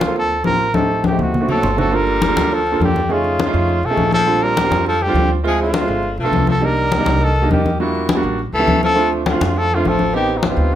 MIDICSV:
0, 0, Header, 1, 6, 480
1, 0, Start_track
1, 0, Key_signature, -2, "minor"
1, 0, Tempo, 293542
1, 1215, Time_signature, 4, 2, 24, 8
1, 17582, End_track
2, 0, Start_track
2, 0, Title_t, "Trumpet"
2, 0, Program_c, 0, 56
2, 0, Note_on_c, 0, 65, 86
2, 219, Note_off_c, 0, 65, 0
2, 294, Note_on_c, 0, 69, 101
2, 722, Note_off_c, 0, 69, 0
2, 747, Note_on_c, 0, 70, 99
2, 1224, Note_on_c, 0, 69, 99
2, 1248, Note_off_c, 0, 70, 0
2, 1700, Note_off_c, 0, 69, 0
2, 1733, Note_on_c, 0, 67, 82
2, 1979, Note_on_c, 0, 66, 77
2, 2003, Note_off_c, 0, 67, 0
2, 2439, Note_off_c, 0, 66, 0
2, 2467, Note_on_c, 0, 69, 98
2, 2891, Note_off_c, 0, 69, 0
2, 2944, Note_on_c, 0, 69, 101
2, 3187, Note_on_c, 0, 70, 106
2, 3212, Note_off_c, 0, 69, 0
2, 4156, Note_on_c, 0, 69, 100
2, 4181, Note_off_c, 0, 70, 0
2, 4609, Note_off_c, 0, 69, 0
2, 4644, Note_on_c, 0, 67, 95
2, 5110, Note_on_c, 0, 65, 100
2, 5134, Note_off_c, 0, 67, 0
2, 6304, Note_on_c, 0, 69, 102
2, 6329, Note_off_c, 0, 65, 0
2, 6751, Note_off_c, 0, 69, 0
2, 6761, Note_on_c, 0, 69, 109
2, 7247, Note_on_c, 0, 70, 108
2, 7271, Note_off_c, 0, 69, 0
2, 7955, Note_off_c, 0, 70, 0
2, 7975, Note_on_c, 0, 69, 99
2, 8212, Note_on_c, 0, 67, 102
2, 8236, Note_off_c, 0, 69, 0
2, 8677, Note_off_c, 0, 67, 0
2, 8944, Note_on_c, 0, 68, 98
2, 9148, Note_off_c, 0, 68, 0
2, 9183, Note_on_c, 0, 65, 88
2, 10057, Note_off_c, 0, 65, 0
2, 10158, Note_on_c, 0, 69, 101
2, 10578, Note_off_c, 0, 69, 0
2, 10628, Note_on_c, 0, 69, 94
2, 10879, Note_on_c, 0, 70, 102
2, 10903, Note_off_c, 0, 69, 0
2, 11838, Note_on_c, 0, 69, 103
2, 11863, Note_off_c, 0, 70, 0
2, 12282, Note_off_c, 0, 69, 0
2, 12292, Note_on_c, 0, 67, 84
2, 12724, Note_off_c, 0, 67, 0
2, 12770, Note_on_c, 0, 64, 76
2, 13462, Note_off_c, 0, 64, 0
2, 13963, Note_on_c, 0, 69, 106
2, 14398, Note_off_c, 0, 69, 0
2, 14461, Note_on_c, 0, 69, 116
2, 14887, Note_off_c, 0, 69, 0
2, 15188, Note_on_c, 0, 65, 94
2, 15663, Note_on_c, 0, 69, 108
2, 15688, Note_off_c, 0, 65, 0
2, 15933, Note_on_c, 0, 65, 93
2, 15958, Note_off_c, 0, 69, 0
2, 16157, Note_on_c, 0, 69, 98
2, 16181, Note_off_c, 0, 65, 0
2, 16597, Note_off_c, 0, 69, 0
2, 16606, Note_on_c, 0, 67, 92
2, 16960, Note_on_c, 0, 63, 55
2, 16985, Note_off_c, 0, 67, 0
2, 17101, Note_on_c, 0, 65, 85
2, 17126, Note_off_c, 0, 63, 0
2, 17580, Note_off_c, 0, 65, 0
2, 17582, End_track
3, 0, Start_track
3, 0, Title_t, "Grand piano"
3, 0, Program_c, 1, 0
3, 104, Note_on_c, 1, 58, 64
3, 119, Note_on_c, 1, 60, 58
3, 129, Note_on_c, 1, 69, 71
3, 131, Note_on_c, 1, 65, 58
3, 539, Note_off_c, 1, 58, 0
3, 546, Note_off_c, 1, 60, 0
3, 552, Note_off_c, 1, 65, 0
3, 552, Note_off_c, 1, 69, 0
3, 711, Note_on_c, 1, 58, 67
3, 722, Note_on_c, 1, 60, 61
3, 725, Note_on_c, 1, 65, 61
3, 735, Note_on_c, 1, 67, 72
3, 1059, Note_off_c, 1, 58, 0
3, 1065, Note_off_c, 1, 60, 0
3, 1066, Note_off_c, 1, 65, 0
3, 1071, Note_off_c, 1, 67, 0
3, 1209, Note_on_c, 1, 57, 72
3, 1213, Note_on_c, 1, 60, 67
3, 1224, Note_on_c, 1, 63, 66
3, 1230, Note_on_c, 1, 67, 78
3, 1633, Note_off_c, 1, 57, 0
3, 1635, Note_off_c, 1, 60, 0
3, 1641, Note_off_c, 1, 63, 0
3, 1643, Note_off_c, 1, 67, 0
3, 1806, Note_on_c, 1, 57, 67
3, 1807, Note_on_c, 1, 60, 65
3, 1827, Note_on_c, 1, 63, 59
3, 1828, Note_on_c, 1, 67, 76
3, 2148, Note_off_c, 1, 57, 0
3, 2148, Note_off_c, 1, 60, 0
3, 2158, Note_off_c, 1, 63, 0
3, 2159, Note_off_c, 1, 67, 0
3, 2298, Note_on_c, 1, 57, 72
3, 2298, Note_on_c, 1, 60, 64
3, 2306, Note_on_c, 1, 62, 64
3, 2309, Note_on_c, 1, 66, 74
3, 2657, Note_on_c, 1, 84, 62
3, 2718, Note_off_c, 1, 57, 0
3, 2718, Note_off_c, 1, 60, 0
3, 2723, Note_off_c, 1, 62, 0
3, 2724, Note_off_c, 1, 66, 0
3, 2885, Note_on_c, 1, 57, 79
3, 2894, Note_on_c, 1, 60, 75
3, 2901, Note_on_c, 1, 62, 76
3, 2911, Note_on_c, 1, 66, 91
3, 3105, Note_off_c, 1, 62, 0
3, 3105, Note_off_c, 1, 84, 0
3, 3120, Note_on_c, 1, 58, 78
3, 3130, Note_on_c, 1, 62, 74
3, 3132, Note_off_c, 1, 57, 0
3, 3134, Note_on_c, 1, 65, 76
3, 3137, Note_off_c, 1, 60, 0
3, 3145, Note_off_c, 1, 66, 0
3, 3146, Note_on_c, 1, 69, 86
3, 3551, Note_off_c, 1, 58, 0
3, 3555, Note_off_c, 1, 62, 0
3, 3557, Note_off_c, 1, 65, 0
3, 3563, Note_off_c, 1, 69, 0
3, 3723, Note_on_c, 1, 58, 81
3, 3732, Note_on_c, 1, 62, 78
3, 3742, Note_on_c, 1, 65, 78
3, 3744, Note_on_c, 1, 69, 90
3, 4236, Note_off_c, 1, 58, 0
3, 4241, Note_off_c, 1, 62, 0
3, 4245, Note_off_c, 1, 65, 0
3, 4247, Note_off_c, 1, 69, 0
3, 4448, Note_on_c, 1, 58, 78
3, 4449, Note_on_c, 1, 62, 68
3, 4463, Note_on_c, 1, 65, 68
3, 4467, Note_on_c, 1, 69, 92
3, 4875, Note_off_c, 1, 58, 0
3, 4875, Note_off_c, 1, 62, 0
3, 4882, Note_off_c, 1, 65, 0
3, 4885, Note_off_c, 1, 69, 0
3, 5050, Note_on_c, 1, 57, 77
3, 5059, Note_on_c, 1, 61, 73
3, 5070, Note_on_c, 1, 63, 74
3, 5079, Note_on_c, 1, 68, 90
3, 5476, Note_off_c, 1, 57, 0
3, 5481, Note_off_c, 1, 61, 0
3, 5486, Note_off_c, 1, 63, 0
3, 5491, Note_off_c, 1, 68, 0
3, 5652, Note_on_c, 1, 57, 83
3, 5656, Note_on_c, 1, 61, 80
3, 5665, Note_on_c, 1, 65, 96
3, 5668, Note_on_c, 1, 63, 79
3, 6161, Note_off_c, 1, 57, 0
3, 6163, Note_off_c, 1, 61, 0
3, 6168, Note_off_c, 1, 65, 0
3, 6169, Note_off_c, 1, 63, 0
3, 6381, Note_on_c, 1, 57, 85
3, 6385, Note_on_c, 1, 61, 73
3, 6392, Note_on_c, 1, 63, 75
3, 6399, Note_on_c, 1, 68, 85
3, 6802, Note_off_c, 1, 57, 0
3, 6804, Note_off_c, 1, 61, 0
3, 6807, Note_off_c, 1, 63, 0
3, 6811, Note_off_c, 1, 68, 0
3, 6970, Note_on_c, 1, 55, 79
3, 6983, Note_on_c, 1, 60, 71
3, 6983, Note_on_c, 1, 62, 79
3, 6986, Note_on_c, 1, 65, 86
3, 7396, Note_off_c, 1, 55, 0
3, 7403, Note_off_c, 1, 60, 0
3, 7403, Note_off_c, 1, 62, 0
3, 7404, Note_off_c, 1, 65, 0
3, 7584, Note_on_c, 1, 55, 75
3, 7587, Note_on_c, 1, 60, 65
3, 7589, Note_on_c, 1, 62, 70
3, 7603, Note_on_c, 1, 65, 79
3, 8088, Note_off_c, 1, 55, 0
3, 8089, Note_off_c, 1, 60, 0
3, 8090, Note_off_c, 1, 62, 0
3, 8097, Note_off_c, 1, 65, 0
3, 8287, Note_on_c, 1, 55, 78
3, 8301, Note_on_c, 1, 60, 74
3, 8306, Note_on_c, 1, 62, 71
3, 8320, Note_on_c, 1, 65, 93
3, 8715, Note_off_c, 1, 55, 0
3, 8722, Note_off_c, 1, 60, 0
3, 8724, Note_off_c, 1, 62, 0
3, 8731, Note_off_c, 1, 65, 0
3, 8886, Note_on_c, 1, 56, 81
3, 8886, Note_on_c, 1, 60, 75
3, 8892, Note_on_c, 1, 64, 73
3, 8897, Note_on_c, 1, 65, 90
3, 9314, Note_off_c, 1, 56, 0
3, 9314, Note_off_c, 1, 60, 0
3, 9317, Note_off_c, 1, 64, 0
3, 9320, Note_off_c, 1, 65, 0
3, 9485, Note_on_c, 1, 56, 71
3, 9491, Note_on_c, 1, 60, 66
3, 9496, Note_on_c, 1, 64, 66
3, 9505, Note_on_c, 1, 65, 80
3, 9853, Note_off_c, 1, 56, 0
3, 9856, Note_off_c, 1, 60, 0
3, 9859, Note_off_c, 1, 64, 0
3, 9864, Note_off_c, 1, 65, 0
3, 10207, Note_on_c, 1, 59, 72
3, 10209, Note_on_c, 1, 57, 77
3, 10214, Note_on_c, 1, 65, 88
3, 10217, Note_on_c, 1, 62, 68
3, 10635, Note_off_c, 1, 57, 0
3, 10635, Note_off_c, 1, 59, 0
3, 10638, Note_off_c, 1, 65, 0
3, 10639, Note_off_c, 1, 62, 0
3, 10800, Note_on_c, 1, 55, 76
3, 10815, Note_on_c, 1, 58, 74
3, 10818, Note_on_c, 1, 62, 75
3, 10825, Note_on_c, 1, 63, 89
3, 11231, Note_off_c, 1, 55, 0
3, 11238, Note_off_c, 1, 58, 0
3, 11240, Note_off_c, 1, 62, 0
3, 11243, Note_off_c, 1, 63, 0
3, 11413, Note_on_c, 1, 55, 83
3, 11421, Note_on_c, 1, 58, 78
3, 11424, Note_on_c, 1, 62, 77
3, 11425, Note_on_c, 1, 63, 98
3, 11921, Note_off_c, 1, 55, 0
3, 11925, Note_off_c, 1, 58, 0
3, 11926, Note_off_c, 1, 62, 0
3, 11927, Note_off_c, 1, 63, 0
3, 12131, Note_on_c, 1, 55, 79
3, 12142, Note_on_c, 1, 58, 72
3, 12146, Note_on_c, 1, 62, 72
3, 12160, Note_on_c, 1, 63, 95
3, 12556, Note_off_c, 1, 55, 0
3, 12561, Note_off_c, 1, 58, 0
3, 12563, Note_off_c, 1, 62, 0
3, 12570, Note_off_c, 1, 63, 0
3, 12752, Note_on_c, 1, 55, 77
3, 12754, Note_on_c, 1, 58, 74
3, 12754, Note_on_c, 1, 62, 74
3, 12765, Note_on_c, 1, 66, 88
3, 13166, Note_off_c, 1, 55, 0
3, 13167, Note_off_c, 1, 58, 0
3, 13167, Note_off_c, 1, 62, 0
3, 13173, Note_off_c, 1, 66, 0
3, 13329, Note_on_c, 1, 55, 86
3, 13335, Note_on_c, 1, 58, 78
3, 13345, Note_on_c, 1, 62, 80
3, 13351, Note_on_c, 1, 66, 94
3, 13694, Note_off_c, 1, 55, 0
3, 13697, Note_off_c, 1, 58, 0
3, 13702, Note_off_c, 1, 62, 0
3, 13705, Note_off_c, 1, 66, 0
3, 14043, Note_on_c, 1, 55, 87
3, 14048, Note_on_c, 1, 59, 77
3, 14055, Note_on_c, 1, 61, 79
3, 14068, Note_on_c, 1, 64, 93
3, 14471, Note_off_c, 1, 55, 0
3, 14473, Note_off_c, 1, 59, 0
3, 14477, Note_off_c, 1, 61, 0
3, 14483, Note_off_c, 1, 64, 0
3, 14634, Note_on_c, 1, 57, 79
3, 14638, Note_on_c, 1, 60, 74
3, 14646, Note_on_c, 1, 62, 78
3, 14656, Note_on_c, 1, 65, 88
3, 15066, Note_off_c, 1, 57, 0
3, 15068, Note_off_c, 1, 60, 0
3, 15072, Note_off_c, 1, 62, 0
3, 15077, Note_off_c, 1, 65, 0
3, 15240, Note_on_c, 1, 57, 70
3, 15256, Note_on_c, 1, 60, 63
3, 15258, Note_on_c, 1, 65, 85
3, 15259, Note_on_c, 1, 62, 66
3, 15752, Note_off_c, 1, 57, 0
3, 15760, Note_off_c, 1, 60, 0
3, 15761, Note_off_c, 1, 65, 0
3, 15762, Note_off_c, 1, 62, 0
3, 15949, Note_on_c, 1, 57, 77
3, 15955, Note_on_c, 1, 60, 78
3, 15960, Note_on_c, 1, 62, 74
3, 15961, Note_on_c, 1, 65, 91
3, 16382, Note_off_c, 1, 57, 0
3, 16386, Note_off_c, 1, 60, 0
3, 16388, Note_off_c, 1, 62, 0
3, 16389, Note_off_c, 1, 65, 0
3, 16559, Note_on_c, 1, 59, 84
3, 16569, Note_on_c, 1, 60, 77
3, 16576, Note_on_c, 1, 63, 76
3, 16580, Note_on_c, 1, 67, 95
3, 16987, Note_off_c, 1, 59, 0
3, 16992, Note_off_c, 1, 60, 0
3, 16995, Note_off_c, 1, 63, 0
3, 16998, Note_off_c, 1, 67, 0
3, 17153, Note_on_c, 1, 59, 74
3, 17162, Note_on_c, 1, 60, 67
3, 17171, Note_on_c, 1, 63, 61
3, 17184, Note_on_c, 1, 67, 82
3, 17523, Note_off_c, 1, 59, 0
3, 17528, Note_off_c, 1, 60, 0
3, 17533, Note_off_c, 1, 63, 0
3, 17539, Note_off_c, 1, 67, 0
3, 17582, End_track
4, 0, Start_track
4, 0, Title_t, "Tenor saxophone"
4, 0, Program_c, 2, 66
4, 2429, Note_on_c, 2, 54, 82
4, 2871, Note_off_c, 2, 54, 0
4, 2931, Note_on_c, 2, 54, 75
4, 3170, Note_on_c, 2, 55, 87
4, 3195, Note_off_c, 2, 54, 0
4, 4127, Note_on_c, 2, 53, 90
4, 4152, Note_off_c, 2, 55, 0
4, 4594, Note_off_c, 2, 53, 0
4, 4618, Note_on_c, 2, 50, 82
4, 5080, Note_on_c, 2, 49, 80
4, 5104, Note_off_c, 2, 50, 0
4, 6273, Note_on_c, 2, 53, 80
4, 6298, Note_off_c, 2, 49, 0
4, 6748, Note_off_c, 2, 53, 0
4, 6768, Note_on_c, 2, 53, 83
4, 7250, Note_on_c, 2, 55, 85
4, 7274, Note_off_c, 2, 53, 0
4, 7956, Note_off_c, 2, 55, 0
4, 7977, Note_on_c, 2, 53, 85
4, 8212, Note_on_c, 2, 50, 79
4, 8237, Note_off_c, 2, 53, 0
4, 8678, Note_off_c, 2, 50, 0
4, 8944, Note_on_c, 2, 53, 82
4, 9148, Note_off_c, 2, 53, 0
4, 9192, Note_on_c, 2, 50, 81
4, 10062, Note_off_c, 2, 50, 0
4, 10129, Note_on_c, 2, 53, 79
4, 10563, Note_off_c, 2, 53, 0
4, 10595, Note_on_c, 2, 53, 70
4, 10841, Note_on_c, 2, 55, 83
4, 10866, Note_off_c, 2, 53, 0
4, 11790, Note_on_c, 2, 51, 80
4, 11814, Note_off_c, 2, 55, 0
4, 12265, Note_off_c, 2, 51, 0
4, 12277, Note_on_c, 2, 51, 73
4, 12716, Note_off_c, 2, 51, 0
4, 12762, Note_on_c, 2, 46, 68
4, 13458, Note_off_c, 2, 46, 0
4, 13959, Note_on_c, 2, 52, 89
4, 14396, Note_off_c, 2, 52, 0
4, 14445, Note_on_c, 2, 53, 85
4, 14879, Note_off_c, 2, 53, 0
4, 15177, Note_on_c, 2, 50, 78
4, 15635, Note_on_c, 2, 53, 84
4, 15660, Note_off_c, 2, 50, 0
4, 15901, Note_on_c, 2, 50, 72
4, 15925, Note_off_c, 2, 53, 0
4, 16134, Note_on_c, 2, 53, 84
4, 16158, Note_off_c, 2, 50, 0
4, 16591, Note_off_c, 2, 53, 0
4, 16601, Note_on_c, 2, 51, 81
4, 16926, Note_on_c, 2, 48, 48
4, 16951, Note_off_c, 2, 51, 0
4, 17065, Note_off_c, 2, 48, 0
4, 17065, Note_on_c, 2, 48, 67
4, 17582, Note_off_c, 2, 48, 0
4, 17582, End_track
5, 0, Start_track
5, 0, Title_t, "Upright bass"
5, 0, Program_c, 3, 32
5, 0, Note_on_c, 3, 38, 93
5, 676, Note_off_c, 3, 38, 0
5, 734, Note_on_c, 3, 33, 80
5, 1847, Note_off_c, 3, 33, 0
5, 1943, Note_on_c, 3, 38, 85
5, 2611, Note_off_c, 3, 38, 0
5, 2652, Note_on_c, 3, 31, 78
5, 3768, Note_off_c, 3, 31, 0
5, 3859, Note_on_c, 3, 38, 93
5, 4530, Note_off_c, 3, 38, 0
5, 4579, Note_on_c, 3, 41, 81
5, 5691, Note_off_c, 3, 41, 0
5, 5783, Note_on_c, 3, 41, 96
5, 6229, Note_off_c, 3, 41, 0
5, 6256, Note_on_c, 3, 35, 73
5, 6482, Note_off_c, 3, 35, 0
5, 6495, Note_on_c, 3, 34, 86
5, 7609, Note_off_c, 3, 34, 0
5, 7693, Note_on_c, 3, 41, 94
5, 8367, Note_off_c, 3, 41, 0
5, 8406, Note_on_c, 3, 38, 90
5, 9524, Note_off_c, 3, 38, 0
5, 9615, Note_on_c, 3, 31, 88
5, 10064, Note_off_c, 3, 31, 0
5, 10096, Note_on_c, 3, 35, 72
5, 10315, Note_off_c, 3, 35, 0
5, 10325, Note_on_c, 3, 36, 83
5, 11444, Note_off_c, 3, 36, 0
5, 11544, Note_on_c, 3, 36, 92
5, 12212, Note_off_c, 3, 36, 0
5, 12253, Note_on_c, 3, 40, 84
5, 13367, Note_off_c, 3, 40, 0
5, 13460, Note_on_c, 3, 33, 90
5, 13906, Note_off_c, 3, 33, 0
5, 13939, Note_on_c, 3, 37, 75
5, 14162, Note_off_c, 3, 37, 0
5, 14179, Note_on_c, 3, 38, 84
5, 15288, Note_off_c, 3, 38, 0
5, 15382, Note_on_c, 3, 41, 95
5, 16049, Note_off_c, 3, 41, 0
5, 16097, Note_on_c, 3, 33, 87
5, 17206, Note_off_c, 3, 33, 0
5, 17277, Note_on_c, 3, 38, 94
5, 17582, Note_off_c, 3, 38, 0
5, 17582, End_track
6, 0, Start_track
6, 0, Title_t, "Drums"
6, 19, Note_on_c, 9, 63, 90
6, 182, Note_off_c, 9, 63, 0
6, 262, Note_on_c, 9, 63, 30
6, 425, Note_off_c, 9, 63, 0
6, 492, Note_on_c, 9, 63, 34
6, 656, Note_off_c, 9, 63, 0
6, 724, Note_on_c, 9, 63, 77
6, 888, Note_off_c, 9, 63, 0
6, 1213, Note_on_c, 9, 63, 87
6, 1376, Note_off_c, 9, 63, 0
6, 1700, Note_on_c, 9, 63, 95
6, 1864, Note_off_c, 9, 63, 0
6, 1943, Note_on_c, 9, 64, 67
6, 2107, Note_off_c, 9, 64, 0
6, 2195, Note_on_c, 9, 64, 71
6, 2359, Note_off_c, 9, 64, 0
6, 2430, Note_on_c, 9, 64, 75
6, 2594, Note_off_c, 9, 64, 0
6, 2669, Note_on_c, 9, 64, 75
6, 2833, Note_off_c, 9, 64, 0
6, 2914, Note_on_c, 9, 64, 70
6, 3077, Note_off_c, 9, 64, 0
6, 3149, Note_on_c, 9, 63, 32
6, 3313, Note_off_c, 9, 63, 0
6, 3382, Note_on_c, 9, 63, 30
6, 3546, Note_off_c, 9, 63, 0
6, 3625, Note_on_c, 9, 63, 91
6, 3789, Note_off_c, 9, 63, 0
6, 3872, Note_on_c, 9, 63, 92
6, 4036, Note_off_c, 9, 63, 0
6, 4119, Note_on_c, 9, 63, 33
6, 4283, Note_off_c, 9, 63, 0
6, 4362, Note_on_c, 9, 63, 33
6, 4526, Note_off_c, 9, 63, 0
6, 4601, Note_on_c, 9, 63, 80
6, 4765, Note_off_c, 9, 63, 0
6, 4838, Note_on_c, 9, 63, 72
6, 5002, Note_off_c, 9, 63, 0
6, 5069, Note_on_c, 9, 63, 33
6, 5233, Note_off_c, 9, 63, 0
6, 5303, Note_on_c, 9, 63, 30
6, 5467, Note_off_c, 9, 63, 0
6, 5552, Note_on_c, 9, 63, 93
6, 5716, Note_off_c, 9, 63, 0
6, 5799, Note_on_c, 9, 63, 33
6, 5962, Note_off_c, 9, 63, 0
6, 6034, Note_on_c, 9, 63, 31
6, 6198, Note_off_c, 9, 63, 0
6, 6268, Note_on_c, 9, 63, 34
6, 6432, Note_off_c, 9, 63, 0
6, 6498, Note_on_c, 9, 63, 78
6, 6662, Note_off_c, 9, 63, 0
6, 6743, Note_on_c, 9, 63, 66
6, 6906, Note_off_c, 9, 63, 0
6, 7001, Note_on_c, 9, 63, 34
6, 7164, Note_off_c, 9, 63, 0
6, 7238, Note_on_c, 9, 63, 34
6, 7402, Note_off_c, 9, 63, 0
6, 7474, Note_on_c, 9, 63, 94
6, 7638, Note_off_c, 9, 63, 0
6, 7711, Note_on_c, 9, 63, 87
6, 7875, Note_off_c, 9, 63, 0
6, 7953, Note_on_c, 9, 63, 33
6, 8117, Note_off_c, 9, 63, 0
6, 8191, Note_on_c, 9, 63, 34
6, 8355, Note_off_c, 9, 63, 0
6, 8428, Note_on_c, 9, 63, 78
6, 8592, Note_off_c, 9, 63, 0
6, 8919, Note_on_c, 9, 63, 33
6, 9082, Note_off_c, 9, 63, 0
6, 9139, Note_on_c, 9, 63, 34
6, 9302, Note_off_c, 9, 63, 0
6, 9382, Note_on_c, 9, 63, 94
6, 9546, Note_off_c, 9, 63, 0
6, 9624, Note_on_c, 9, 63, 33
6, 9788, Note_off_c, 9, 63, 0
6, 9858, Note_on_c, 9, 63, 31
6, 10021, Note_off_c, 9, 63, 0
6, 10101, Note_on_c, 9, 63, 31
6, 10265, Note_off_c, 9, 63, 0
6, 10350, Note_on_c, 9, 63, 85
6, 10513, Note_off_c, 9, 63, 0
6, 10581, Note_on_c, 9, 63, 67
6, 10745, Note_off_c, 9, 63, 0
6, 10818, Note_on_c, 9, 63, 33
6, 10982, Note_off_c, 9, 63, 0
6, 11069, Note_on_c, 9, 63, 35
6, 11233, Note_off_c, 9, 63, 0
6, 11311, Note_on_c, 9, 63, 95
6, 11475, Note_off_c, 9, 63, 0
6, 11547, Note_on_c, 9, 63, 90
6, 11711, Note_off_c, 9, 63, 0
6, 11797, Note_on_c, 9, 63, 33
6, 11960, Note_off_c, 9, 63, 0
6, 12038, Note_on_c, 9, 63, 33
6, 12202, Note_off_c, 9, 63, 0
6, 12276, Note_on_c, 9, 63, 79
6, 12440, Note_off_c, 9, 63, 0
6, 12521, Note_on_c, 9, 63, 69
6, 12684, Note_off_c, 9, 63, 0
6, 12755, Note_on_c, 9, 63, 35
6, 12919, Note_off_c, 9, 63, 0
6, 13001, Note_on_c, 9, 63, 33
6, 13165, Note_off_c, 9, 63, 0
6, 13228, Note_on_c, 9, 63, 100
6, 13392, Note_off_c, 9, 63, 0
6, 13482, Note_on_c, 9, 63, 35
6, 13646, Note_off_c, 9, 63, 0
6, 13721, Note_on_c, 9, 63, 32
6, 13885, Note_off_c, 9, 63, 0
6, 13964, Note_on_c, 9, 63, 32
6, 14128, Note_off_c, 9, 63, 0
6, 14188, Note_on_c, 9, 63, 84
6, 14352, Note_off_c, 9, 63, 0
6, 14438, Note_on_c, 9, 63, 66
6, 14601, Note_off_c, 9, 63, 0
6, 14683, Note_on_c, 9, 63, 34
6, 14847, Note_off_c, 9, 63, 0
6, 14921, Note_on_c, 9, 63, 31
6, 15085, Note_off_c, 9, 63, 0
6, 15143, Note_on_c, 9, 63, 101
6, 15307, Note_off_c, 9, 63, 0
6, 15393, Note_on_c, 9, 63, 94
6, 15556, Note_off_c, 9, 63, 0
6, 15638, Note_on_c, 9, 63, 33
6, 15801, Note_off_c, 9, 63, 0
6, 15878, Note_on_c, 9, 63, 34
6, 16041, Note_off_c, 9, 63, 0
6, 16112, Note_on_c, 9, 63, 77
6, 16276, Note_off_c, 9, 63, 0
6, 16336, Note_on_c, 9, 63, 68
6, 16500, Note_off_c, 9, 63, 0
6, 16579, Note_on_c, 9, 63, 34
6, 16743, Note_off_c, 9, 63, 0
6, 16824, Note_on_c, 9, 63, 34
6, 16988, Note_off_c, 9, 63, 0
6, 17051, Note_on_c, 9, 63, 96
6, 17214, Note_off_c, 9, 63, 0
6, 17297, Note_on_c, 9, 63, 32
6, 17460, Note_off_c, 9, 63, 0
6, 17582, End_track
0, 0, End_of_file